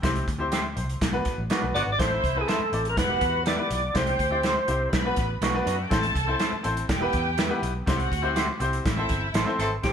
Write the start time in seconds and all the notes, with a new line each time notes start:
Already playing: G5
0.02 C2 C4 E4 G4 C5, kick, snare, closed hi-hat
0.16 closed hi-hat
0.28 D2, kick, closed hi-hat
0.38 C4 E4 G4 C5
0.52 G4 C5 E5 G5, snare, closed hi-hat
0.76 C2 C5, closed hi-hat
0.89 closed hi-hat
1.01 B1, kick, snare, closed hi-hat
1.11 B3 D4 F#4 B4
1.25 kick, snare, closed hi-hat
1.38 A1
1.50 D3 B3 D4 F#4 B4, snare, closed hi-hat
1.61 B1 B3 D4 F#4 B4
1.74 G1 D3 B3 D4 F#4 B4 D5, closed hi-hat
1.86 G#1
1.92 D5
1.98 A1 C4 E4 A4 C5 E5, kick, snare, closed hi-hat
2.24 C2, kick, closed hi-hat
2.35 C4 E4 A4 B4
2.41 G#4
2.48 A4 C5 E5, snare, closed hi-hat
2.60 muted fingered electric bass stroke
2.72 A1 C4 E4 A4 D5, closed hi-hat
2.85 closed hi-hat
2.90 A#4
2.96 E1 F#4 B4 F#5, kick, snare, closed hi-hat
3.08 B3 E4 G4 B4
3.21 E2, kick, snare, closed hi-hat
3.46 G4 B4 D5 E5, snare, closed hi-hat
3.58 B3 E4 G4 B4
3.70 B1, closed hi-hat
3.94 C2 C4 E4 G4 C5 G5, kick, snare, closed hi-hat
4.07 closed hi-hat
4.19 D2, kick, closed hi-hat
4.31 C4 E4 G4 D5
4.43 G4 C5 E5, snare, closed hi-hat
4.68 C2 C4 E4 G4 C5, closed hi-hat
4.92 B1 B4 B5, kick, snare, closed hi-hat
5.04 B3 D4 F#4 B4
5.16 A1, kick, snare, closed hi-hat
5.41 B1 B3 D4 F#4 B4, snare, closed hi-hat
5.50 B3 C4 D4 C5
5.55 D4 F#4 B4 D5
5.66 F#2 D4 E4 F#4 B4 E5, closed hi-hat
5.73 F#4 F#5
5.81 G4 G5
5.89 A1 C4 E4 A4 C5 A5, kick, snare, closed hi-hat
6.03 closed hi-hat
6.16 C2, kick, closed hi-hat
6.27 C4 E4 A4 C5
6.39 A4 C5 E5, snare, closed hi-hat
6.52 muted fingered electric bass stroke
6.63 A1 C4 E4 A4 C5, closed hi-hat
6.77 closed hi-hat
6.88 E1 G4 G5, kick, snare, closed hi-hat
7.00 B3 E4 G4 B4
7.13 E2, kick, snare, closed hi-hat
7.38 G4 B4 E5, snare, closed hi-hat
7.49 B3 E4 G4 B4
7.62 B1, closed hi-hat
7.86 C2 C4 E4 F#4 G4 C5 F#5, kick, snare, closed hi-hat
8.00 closed hi-hat
8.12 D2, kick, closed hi-hat
8.22 C4 E4 G4 C5
8.36 G4 C5 E5, snare, closed hi-hat
8.60 C2 C4 E4 G4 C5, closed hi-hat
8.73 closed hi-hat
8.84 A1 E4 E5, kick, snare, closed hi-hat
8.97 C4 E4 A4 C5
9.09 G1, kick, snare, closed hi-hat
9.34 A1 E3 C4 A4 C5 E5, snare, closed hi-hat
9.46 C4 E4 A4 C5
9.59 G#1 E3 C4 A4 C5 E5, closed hi-hat
9.82 A1 A3 C4 E4 G4 A4 C5, kick, snare, closed hi-hat